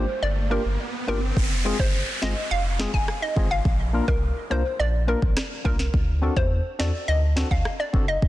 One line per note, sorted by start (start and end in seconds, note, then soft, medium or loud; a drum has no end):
0.00 0.17 C5 medium
0.00 riser medium
0.22 0.58 G1 loud
0.22 0.34 D5 medium
0.50 0.62 A#3 medium
0.50 0.62 D4 medium
0.50 0.63 F4 medium
0.50 0.63 G4 medium
0.50 0.63 A#4 medium
0.65 0.77 G1 medium
1.07 1.32 G1 loud
1.07 1.19 A#3 medium
1.07 1.19 D4 medium
1.07 1.20 F4 medium
1.07 1.20 G4 medium
1.07 1.20 A#4 medium
1.37 1.72 F1 loud
1.37 kick loud
1.37 downlifter medium
1.65 1.76 G#3 medium
1.65 1.77 C4 medium
1.65 1.77 F4 medium
1.65 1.77 G#4 medium
1.79 2.03 G1 medium
1.79 2.03 C5 medium
1.79 kick medium
2.22 2.34 G1 loud
2.22 2.33 G#3 medium
2.22 2.34 C4 medium
2.22 2.34 F4 medium
2.22 2.34 G#4 medium
2.22 2.45 D#5 medium
2.22 cross-stick medium
2.22 snare loud
2.51 2.86 F1 loud
2.51 2.63 F5 loud
2.79 2.91 G#3 medium
2.79 2.91 C4 medium
2.79 2.91 F4 medium
2.79 2.91 G#4 medium
2.79 cross-stick medium
2.79 snare loud
2.94 3.06 F1 medium
2.94 3.05 G#5 medium
2.94 kick medium
3.08 cross-stick loud
3.22 3.34 D#5 medium
3.36 3.60 G#1 medium
3.36 3.48 G#3 medium
3.36 3.48 C4 medium
3.36 3.48 F4 medium
3.36 3.48 G#4 medium
3.36 kick medium
3.51 3.62 F5 medium
3.65 4.01 A#1 loud
3.65 kick loud
3.93 4.05 A#3 medium
3.93 4.05 D4 medium
3.93 4.05 F4 medium
3.93 4.06 A#4 medium
4.08 4.32 C2 loud
4.08 4.31 A#4 medium
4.08 kick medium
4.50 4.63 C2 loud
4.50 4.62 A#3 medium
4.50 4.62 D4 medium
4.50 4.63 F4 medium
4.50 4.63 A#4 medium
4.50 4.74 C5 medium
4.79 5.15 A#1 loud
4.79 4.91 D5 medium
5.07 5.19 A#3 medium
5.07 5.19 D4 medium
5.07 5.20 F4 medium
5.07 5.20 A#4 medium
5.22 5.34 A#1 medium
5.22 kick medium
5.37 cross-stick loud
5.37 cross-stick medium
5.37 snare loud
5.64 5.89 C2 loud
5.64 5.76 A#3 medium
5.64 5.76 D4 medium
5.64 5.77 F4 medium
5.64 5.77 A#4 medium
5.64 kick medium
5.79 snare medium
5.94 6.29 D2 loud
5.94 kick loud
6.22 6.33 C4 medium
6.22 6.34 D4 medium
6.22 6.34 F#4 medium
6.22 6.34 A4 medium
6.37 6.60 E2 medium
6.37 6.60 C5 medium
6.37 kick medium
6.79 6.91 E2 medium
6.79 6.91 C4 medium
6.79 6.91 D4 medium
6.79 6.91 F#4 medium
6.79 6.91 A4 medium
6.79 7.02 D5 medium
6.79 cross-stick medium
6.79 snare loud
7.08 7.44 D2 loud
7.08 7.20 D#5 medium
7.36 7.48 C4 medium
7.36 7.48 D4 medium
7.36 7.48 F#4 medium
7.36 7.49 A4 medium
7.36 cross-stick medium
7.36 snare loud
7.51 7.63 D2 medium
7.51 7.62 F5 medium
7.51 kick medium
7.65 cross-stick loud
7.80 7.91 D5 medium
7.93 8.17 F#1 medium
7.93 8.05 C4 medium
7.93 8.05 D4 medium
7.93 8.05 F#4 medium
7.93 8.06 A4 medium
7.93 kick medium
8.08 8.20 D#5 medium
8.22 8.28 G1 loud
8.22 kick loud